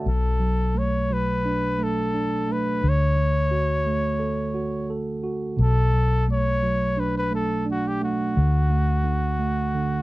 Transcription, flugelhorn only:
0.09 0.80 A4 medium
0.78 1.14 C#5 medium
1.13 1.85 B4 medium
1.83 2.54 A4 medium
2.52 2.91 B4 medium
2.89 4.93 C#5 medium
5.61 6.25 A4 medium
6.32 7.01 C#5 medium
6.99 7.16 B4 medium
7.18 7.33 B4 medium
7.35 7.66 A4 medium
7.71 7.89 F#4 medium
7.88 8.03 G4 medium
8.04 10.02 F#4 medium

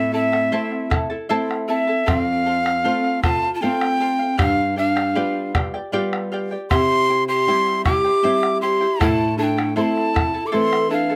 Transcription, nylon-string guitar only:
0.00 0.51 A2 medium
0.52 1.15 A3 medium
0.52 1.15 C4 medium
0.52 1.15 E4 medium
1.30 1.92 A3 medium
1.30 1.92 C4 medium
1.30 1.92 E4 medium
2.08 2.83 F2 medium
2.85 3.47 A3 medium
2.85 3.47 C4 medium
2.85 3.47 F4 medium
3.63 4.24 A3 medium
3.63 4.25 C4 medium
3.63 4.25 F4 medium
4.39 5.14 G2 medium
5.16 5.78 G3 medium
5.16 5.78 B3 medium
5.16 5.79 F4 medium
5.93 6.55 G3 medium
5.93 6.55 B3 medium
5.93 6.55 F4 medium
6.71 7.45 C3 medium
7.47 8.09 G3 medium
7.47 8.09 C4 soft
7.47 8.09 E4 medium
8.24 8.85 G3 medium
8.24 8.86 C4 soft
8.24 8.86 E4 medium
9.01 9.75 A2 medium
9.77 10.38 A3 medium
9.77 10.38 C4 soft
9.77 10.38 E4 medium
10.54 11.15 E3 medium
10.54 11.14 A3 medium
10.54 11.15 C4 medium

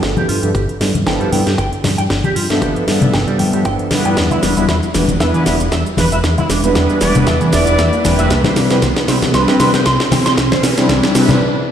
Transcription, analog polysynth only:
0.00 0.39 F3 medium
0.00 0.39 B3 medium
0.00 0.40 D4 medium
0.00 0.40 E4 medium
0.00 0.40 A4 medium
0.42 0.50 F3 medium
0.42 0.50 B3 medium
0.42 0.50 D4 medium
0.42 0.51 E4 medium
0.42 0.51 A4 medium
0.80 0.90 F3 medium
0.80 0.90 B3 medium
0.80 0.90 D4 medium
0.80 0.90 E4 medium
0.80 0.90 A4 medium
1.06 1.29 F3 loud
1.06 1.29 B3 medium
1.06 1.30 D4 medium
1.06 1.30 E4 medium
1.06 1.30 A4 loud
1.31 1.41 F3 medium
1.31 1.41 B3 medium
1.31 1.41 D4 medium
1.31 1.42 E4 medium
1.31 1.42 A4 loud
2.49 2.84 F3 medium
2.49 2.84 B3 medium
2.49 2.85 D4 medium
2.49 2.85 A4 loud
2.49 2.85 E5 medium
2.86 3.88 F3 medium
2.86 3.88 B3 medium
2.86 3.88 D4 medium
2.86 3.89 A4 medium
2.86 3.88 E5 medium
3.90 4.53 G3 medium
3.90 4.53 B3 medium
3.90 4.54 D4 medium
3.90 4.54 E4 medium
3.90 4.54 B4 medium
4.57 4.65 G3 medium
4.57 4.65 B3 medium
4.57 4.65 D4 medium
4.57 4.65 E4 medium
4.57 4.65 B4 medium
4.95 5.04 G3 medium
4.95 5.04 B3 medium
4.95 5.04 D4 medium
4.95 5.04 E4 medium
4.95 5.04 B4 medium
5.21 5.44 G3 loud
5.21 5.44 B3 medium
5.21 5.44 D4 medium
5.21 5.44 E4 medium
5.21 5.44 B4 loud
5.46 5.55 G3 medium
5.46 5.55 B3 medium
5.46 5.56 D4 medium
5.46 5.56 E4 medium
5.46 5.56 B4 loud
6.63 6.98 G3 medium
6.63 6.98 B3 medium
6.63 6.99 D4 medium
6.63 6.99 E4 medium
6.63 6.99 B4 loud
7.00 8.01 G3 medium
7.00 8.02 B3 medium
7.00 8.02 D4 medium
7.00 8.02 E4 medium
7.00 8.02 B4 medium
8.04 8.67 G3 medium
8.04 8.67 C4 medium
8.04 8.67 D4 medium
8.04 8.68 E4 medium
8.04 8.68 B4 medium
8.70 8.78 G3 medium
8.70 8.78 C4 medium
8.70 8.78 D4 medium
8.70 8.78 E4 medium
8.70 8.78 B4 medium
9.07 9.17 G3 medium
9.07 9.17 C4 medium
9.07 9.17 D4 medium
9.07 9.17 E4 medium
9.07 9.18 B4 medium
9.33 9.57 G3 loud
9.33 9.57 C4 medium
9.33 9.57 D4 medium
9.33 9.57 E4 medium
9.33 9.57 B4 loud
9.60 9.69 G3 medium
9.60 9.69 C4 medium
9.60 9.69 D4 medium
9.60 9.69 E4 medium
9.60 9.69 B4 loud
10.77 11.12 G3 loud
10.77 11.12 C4 medium
10.77 11.12 D4 medium
10.77 11.13 E4 medium
11.14 11.40 G3 medium
11.14 11.41 C4 medium
11.14 11.41 D4 medium
11.14 11.41 E4 medium
11.14 11.41 B4 medium

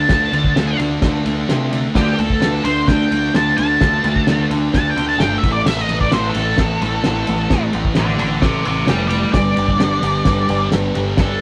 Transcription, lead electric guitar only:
0.00 0.78 A5 medium
1.97 2.19 G4 loud
2.20 2.64 A4 loud
2.65 2.88 C5 loud
2.88 3.33 G5 loud
3.36 3.56 A5 medium
3.57 4.48 A5 loud
4.75 4.89 A5 loud
4.90 5.05 G5 medium
5.09 5.20 A5 medium
5.20 5.38 G5 loud
5.38 5.52 E5 medium
5.52 5.66 D5 medium
5.66 5.81 E5 medium
5.81 5.97 D#5 medium
6.01 6.13 D5 loud
6.13 6.28 C5 medium
6.30 7.63 A4 loud
7.97 8.19 A4 medium
7.97 8.19 D5 loud
8.20 8.41 A4 medium
8.20 8.42 D5 medium
8.42 8.64 C5 medium
8.42 8.65 E5 loud
8.67 8.88 C5 medium
8.67 8.89 E5 medium
8.89 9.07 D5 medium
8.89 9.08 G5 medium
9.08 9.31 D5 medium
9.08 9.33 G5 medium
9.33 10.68 D5 loud
11.21 11.41 A4 loud

